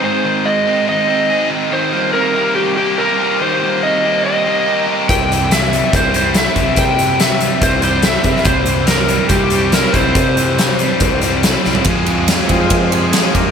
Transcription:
<<
  \new Staff \with { instrumentName = "Electric slide guitar" } { \time 4/4 \key c \phrygian \tempo 4 = 142 c''4 ees''4 ees''4. r8 | c''4 bes'4 g'8 g'8 bes'4 | c''4 ees''4 ees''4. r8 | g''4 e''4 c''8 c''8 e''4 |
g''4 e''4 c''8 c''8 e''4 | c''4 bes'4 g'4 bes'8 c''8~ | c''2. r4 | r1 | }
  \new Staff \with { instrumentName = "Tonewheel organ" } { \time 4/4 \key c \phrygian r1 | r1 | r1 | r1 |
r1 | r1 | r1 | r4. <f aes c' e' f'>8 <aes f'>8 <f' aes'>8 <f' aes'>8 <g' bes'>8 | }
  \new Staff \with { instrumentName = "Overdriven electric guitar" } { \time 4/4 \key c \phrygian <aes, ees c' ees'>8 ees8 aes8 c'8 ees8 c'8 ees'8 ees8 | ees8 g8 c'8 g'8 g8 g'8 bes'8 g'8 | ees8 g8 c'8 g'8 g8 g'8 bes'8 g'8 | c8 e8 g8 c'8 e8 c'8 e'8 c'8 |
c8 e8 g8 c'8 e8 c'8 e'8 c'8 | c8 e8 g8 c'8 e8 c'8 e'8 c'8 | c8 e8 g8 c'8 e8 c'8 e'8 c'8 | <f aes c' f'>1 | }
  \new Staff \with { instrumentName = "Distorted electric guitar" } { \clef bass \time 4/4 \key c \phrygian <aes, c' ees' aes'>8 ees8 aes8 c'8 ees'8 c'8 aes'8 ees8 | ees8 bes8 ees8 bes8 c'8 bes8 g'8 c'8 | ees8 bes8 ees8 bes8 c'8 bes8 g'8 c'8 | c8 e8 e8 g8 c'8 g8 e'8 c'8 |
c8 e8 e8 g8 c'8 g8 e'8 c'8 | c8 e8 e8 g8 c'8 g8 e'8 c'8 | c8 e8 e8 g8 c'8 g8 e'8 c'8 | <f, c f aes c' aes'>4. <f, c f aes c' aes'>4. <f, c f aes c' aes'>4 | }
  \new Staff \with { instrumentName = "Fingered electric bass" } { \clef bass \time 4/4 \key c \phrygian r1 | r1 | r1 | c,2 c,4. c,8 |
c2 c,4. c16 r16 | c,2 c,4. c,8 | c2 c,4. c,16 r16 | f,4. f,8 f4. f,8 | }
  \new DrumStaff \with { instrumentName = "Drums" } \drummode { \time 4/4 r4 r4 r4 r4 | r4 r4 r4 r4 | r4 r4 r4 r4 | <hh bd>8 hh8 <hh sn>8 hh8 <hh bd>8 hh8 <hh sn>8 <hh bd>8 |
<hh bd>8 hh8 <hh sn>8 hh8 <hh bd>8 hh8 <hh sn>8 <hh bd>16 sn16 | <hh bd>8 hh8 <hh sn>8 hh8 <hh bd>8 hh8 <hh sn>8 <hh bd>8 | <hh bd>8 hh8 <hh sn>8 hh8 <hh bd>8 hh8 <hh sn>8 sn16 tomfh16 | <bd cymr>8 cymr8 <cymr sn>8 <bd cymr>8 <bd cymr>8 cymr8 <cymr sn>8 <bd cymr>8 | }
>>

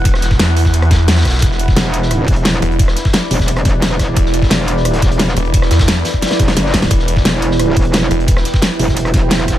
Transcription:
<<
  \new Staff \with { instrumentName = "Ambient pad" } { \time 4/4 \key e \minor \tempo 4 = 175 << { fis''1 | d''1~ | d''1~ | d''1~ |
d''1 | g''1~ | g''1 | } \\ { <e' b'>1~ | <e' b'>1~ | <e' b'>1~ | <e' b'>1~ |
<e' b'>1~ | <e' b'>1~ | <e' b'>1 | } >> }
  \new Staff \with { instrumentName = "Detuned saw bass" } { \clef bass \time 4/4 \key e \minor e,,8 e,,8 e,2~ e,8 b,,8 | e,,4 r2 r8 e,,8~ | e,,8 r2. r8 | e,,4 r2 r8 e,,8~ |
e,,8 e,4 r2 r8 | e,,4 r2 r8 e,,8~ | e,,8 r2. r8 | }
  \new Staff \with { instrumentName = "Wobble bass" } { \clef bass \time 4/4 \key e \minor r1 | r4 e,,4. e,,4 r8 | r4. e,,2~ e,,8 | r4 e,,4. e,,4 r8 |
r2 r8 e,,8 fis,,4 | r4 e,,4. e,,4 r8 | r4. e,,2~ e,,8 | }
  \new DrumStaff \with { instrumentName = "Drums" } \drummode { \time 4/4 <hh bd>16 <ss sn>16 <hh sn>16 <bd sn>16 <hh sn>8 <hh hho>16 <bd sn>16 hh16 <hh ss>16 <hh bd sn>8 <hh sn>16 <hh ss sn>32 <hh sn>32 <hh bd ss sn>32 <hh sn>32 <hh sn>32 <hh sn>32 | <hh bd>16 sn16 hh16 <bd sn>16 <hh sn>8 hh16 sn16 <hh ss>8 <hh hho bd>16 hh16 <hh sn>8 <hh ss>16 hh16 | <hh bd>16 <ss sn>16 <hh sn>16 <bd sn>16 <hh sn>8 <hh hho>16 <bd sn>16 hh16 <hh ss>16 <hh bd sn>8 <hh sn>16 <hh ss>16 <hh bd ss sn>8 | <hh bd>16 sn16 hh16 <bd sn>16 <hh sn>8 hh16 sn16 <hh ss>16 hh16 <hh bd sn>16 hh16 <hh sn>16 sn16 <hh ss>16 hh16 |
<hh bd>16 <ss sn>16 <hh sn>16 <hh bd sn>16 <hh sn>8 <hh hho sn>16 bd16 <hh sn>32 <hh sn>32 <hh sn>16 <hh bd>16 sn16 <hh sn>16 sn16 <hh bd sn>16 sn16 | <hh bd>16 sn16 hh16 <bd sn>16 <hh sn>8 hh16 sn16 <hh ss>8 <hh hho bd>16 hh16 <hh sn>8 <hh ss>16 hh16 | <hh bd>16 <ss sn>16 <hh sn>16 <bd sn>16 <hh sn>8 <hh hho>16 <bd sn>16 hh16 <hh ss>16 <hh bd sn>8 <hh sn>16 <hh ss>16 <hh bd ss sn>8 | }
>>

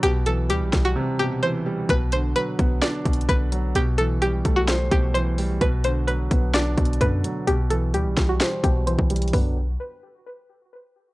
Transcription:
<<
  \new Staff \with { instrumentName = "Synth pluck" } { \time 4/4 \key b \phrygian \tempo 4 = 129 g'8 a'8 g'8. fis'8. g'8 c''4 | b'8 c''8 b'4 d''4 b'8 r8 | g'8 a'8 g'8. fis'8. g'8 c''4 | b'8 c''8 b'4 d''4 b'8 r8 |
g'8 a'8 g'8. fis'8. g'8 c''4 | b'8 r2. r8 | }
  \new Staff \with { instrumentName = "Grand piano" } { \clef bass \time 4/4 \key b \phrygian b,8 e8 g4 c8 b,8 e8 g8 | b,8 d8 fis8 b8 d'8 b,8 d8 fis8 | b,8 e8 g8 a8 c''8 b,8 e8 g8 | b,8 d8 fis8 b8 d'8 b,8 d8 fis8 |
b,8 e8 g4 c''8 b,8 e8 g8 | <d fis b d'>8 r2. r8 | }
  \new Staff \with { instrumentName = "808-style bass" } { \clef bass \time 4/4 \key b \phrygian b,,4 d,16 b,,16 b,,8 r2 | b,,4 r8 b,,8 r8 b,,8 b,,4 | b,,4. b,,4 b,,4. | b,,4. b,,4 b,,8 fis,8 r8 |
b,,4 d,16 b,,16 b,,8 r8 b,,8. b,,8. | b,,4 r2. | }
  \new DrumStaff \with { instrumentName = "Drums" } \drummode { \time 4/4 hh8 hh8 hh8 <hh bd sn>8 r4 r4 | <hh bd>8 hh8 hh8 <hh bd>8 \tuplet 3/2 { <hh sn>16 r16 r16 <hh bd>16 hh16 hh16 } <hh bd>8 hh8 | hh8 hh8 hh8 <hh bd>8 <hh sn>8 <hh bd>8 hh8 hho8 | <hh bd>8 hh8 hh8 <hh bd>8 \tuplet 3/2 { <hh sn>16 r16 r16 <hh bd>16 hh16 hh16 } <hh bd>8 hh8 |
hh8 hh8 hh8 <hh bd sn>8 <hh sn>8 <hh bd>8 hh16 bd16 hh32 hh32 hh32 hh32 | <hho bd tomfh>4 r4 r4 r4 | }
>>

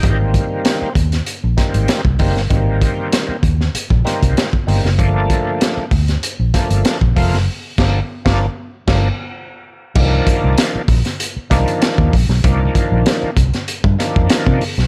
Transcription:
<<
  \new Staff \with { instrumentName = "Tonewheel organ" } { \time 4/4 \key c \dorian \tempo 4 = 97 <ees' g'>16 r2. r8. | r1 | r1 | r1 |
r1 | r1 | }
  \new Staff \with { instrumentName = "Tonewheel organ" } { \time 4/4 \key c \dorian <ees g bes b c'>4. r4 <ees g bes c'>8. r16 <ees g bes c'>16 r16 | <ees g bes c'>4. r4 <ees g bes c'>8. r16 <ees g bes c'>16 r16 | <f a bes d'>4. r4 <f a bes d'>8. r16 <f a bes f'>16 r16 | r8 <f bes d'>8 r16 <f bes d'>8 r8 <f bes d'>8 r4 r16 |
<ees f bes d'>4. r4 <ees f bes d'>4 r8 | <ees f bes d'>4. r4 <ees f bes d'>4 r8 | }
  \new Staff \with { instrumentName = "Fingered electric bass" } { \clef bass \time 4/4 \key c \dorian aes,,8. r8. ees,8 r16 bes,,16 r16 aes,,16 r16 c,16 fis,,16 g,,16 | aes,,8. r8. ees,8 r16 bes,,16 r16 c,16 r8 g,,16 fis,,16 | g,,8. r8. d,8 r16 bes,,16 r16 g,,16 r16 bes,,16 f,,16 fis,,16 | r8 g,,8 r16 g,,8 r8 g,,8 r4 r16 |
c,8 r16 c,16 r8 bes,,16 r8. c,16 r8 ees,16 bes,,16 b,,16 | c,8 r16 bes,,16 r8 c,16 r8 g,16 r16 f,16 r16 c16 r16 b,,16 | }
  \new DrumStaff \with { instrumentName = "Drums" } \drummode { \time 4/4 <hh bd>8 <hh bd>8 <hh sn>8 <hh bd>16 <hh sn>16 hh8 <hh bd sn>16 hh16 <hh sn>16 bd16 <hho bd>16 sn16 | <hh bd>8 <hh bd>8 <hh sn>8 <hh bd>16 sn16 hh16 bd16 <hh sn>16 <hh bd>16 <hh sn>16 bd16 hho16 sn16 | <hh bd>8 <hh bd>8 <hh sn>8 <hho bd>16 <hh sn>16 hh8 <hh bd sn>16 hh16 <hh sn>16 bd16 <hho bd>16 sn16 | r8 <cymc bd sn>8 r16 <bd sn>8. r16 <cymc bd sn>8. r4 |
<cymc bd>8 <hh bd>8 <hh sn>8 <hho bd>16 <hh sn>16 hh8 <hh bd sn>16 hh16 <hh sn>16 bd16 <hho bd>16 sn16 | <hh bd>8 <hh bd>8 <hh sn>8 <hh bd>16 <hh sn>16 hh16 bd16 <hh sn>16 bd16 <hh sn>16 bd16 hho16 sn16 | }
>>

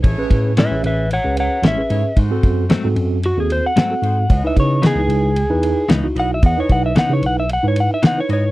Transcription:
<<
  \new Staff \with { instrumentName = "Electric slide guitar" } { \time 4/4 \key cis \minor \tempo 4 = 113 r4 <b' e''>8 <b' e''>8 <cis'' fis''>8 <cis'' fis''>8 e''4 | r2 fis'16 gis'16 bis'16 fis''4~ fis''16~ | fis''16 e''16 cis''8 gis'2 r8 fis''16 e''16 | fis''16 cis''16 fis''16 e''16 fis''16 cis''16 fis''16 e''16 fis''16 cis''16 fis''16 e''16 fis''16 cis''16 cis''8 | }
  \new Staff \with { instrumentName = "Horn section" } { \time 4/4 \key cis \minor <a e' gis' cis''>4 r2 r8 <e' gis' a' cis''>16 r16 | <gis fis' a' bis'>4 r2 r8 <fis' gis' a' bis'>16 r16 | <e b' cis'' dis''>4 r2 r8 <e' b' cis'' dis''>16 r16 | <e b' cis'' dis''>4 r2 r8 <e' b' cis'' dis''>16 r16 | }
  \new Staff \with { instrumentName = "Tine electric piano" } { \time 4/4 \key cis \minor r16 <cis' gis' b'>8. r16 <cis' gis' cis''>8. r16 <cis' gis' b'>8. r16 <cis' gis' b'>8. | r16 <bis fis' a'>8. r16 <bis fis' a'>8. r16 <bis fis' a'>8. r16 <bis fis' a'>8. | r16 <dis' e' b'>8. r16 <dis' e' b'>8. r16 <dis' e' b'>8. r16 <dis' e' fis'>8. | r16 <dis' e' b'>8. r16 <dis' e' b'>8. r16 <dis' e' b'>8. r16 <dis' e' b'>8. | }
  \new Staff \with { instrumentName = "Clean electric guitar" } { \clef bass \time 4/4 \key cis \minor r4 <a, gis cis' e'>8 r4. <a, gis cis' e'>8 r8 | r4 <gis, fis a bis>8 r4. <gis, fis a bis>8 r8 | r4 <cis e b dis'>8 r4. <cis e b dis'>8 r8 | r4 <cis e b dis'>8 r4. <cis e b dis'>8 r8 | }
  \new Staff \with { instrumentName = "Tine electric piano" } { \clef bass \time 4/4 \key cis \minor a,,16 a,,16 a,8. a,,16 a,,8. cis,8 r16 a,,16 a,,16 gis,16 r16 | gis,16 gis,16 fis,8 r16 gis,16 fis,8. dis,8 r8. gis,8 | cis,16 cis,16 cis8. cis,16 cis,8. e,8 r16 cis,16 cis,16 b,,8 | e,16 cis,16 b,,8 r16 cis16 b,,8. gis,8 r8. gis,8 | }
  \new DrumStaff \with { instrumentName = "Drums" } \drummode { \time 4/4 <bd cymr>8 <bd cymr>8 <cymr sn>8 cymr8 cymr8 cymr8 <cymr sn>8 cymr8 | <bd cymr>8 <bd cymr>8 <cymr sn>8 cymr8 cymr8 cymr8 <cymr sn>8 cymr8 | <bd cymr>8 <bd cymr>8 <cymr sn>8 cymr8 cymr8 cymr8 <cymr sn>8 cymr8 | <bd cymr>8 <bd cymr>8 <cymr sn>8 cymr8 cymr8 cymr8 <cymr sn>8 cymr8 | }
>>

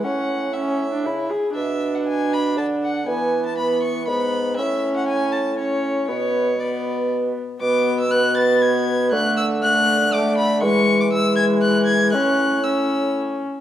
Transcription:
<<
  \new Staff \with { instrumentName = "Violin" } { \time 3/4 \key b \dorian \tempo 4 = 119 fis''4 e''4. r8 | e''8. fis''16 gis''8 b''8 a''8 fis''8 | gis''8. a''16 b''8 cis'''8 b''4 | e''8. fis''16 gis''8 a''8 cis''4 |
cis''4 d''4 r4 | d'''8. e'''16 fis'''8 a'''8 gis'''4 | fis'''8 e'''8 fis'''4 d'''8 b''8 | cis'''8. d'''16 e'''8 gis'''8 fis'''8 gis'''8 |
fis'''4 e'''4 r4 | }
  \new Staff \with { instrumentName = "Viola" } { \time 3/4 \key b \dorian cis'4 cis'8. d'16 e'8 gis'8 | d'2. | b4 b4 b4 | cis'2 cis'4 |
b4 b4. r8 | b4 b2 | a4 a4 a4 | gis4 gis2 |
cis'4 cis'4. r8 | }
  \new Staff \with { instrumentName = "Bassoon" } { \clef bass \time 3/4 \key b \dorian a,2 cis8 r8 | b,2 d4 | e2 gis,4 | a,2. |
b,2~ b,8 r8 | b,2. | d2. | e2. |
a,2~ a,8 r8 | }
>>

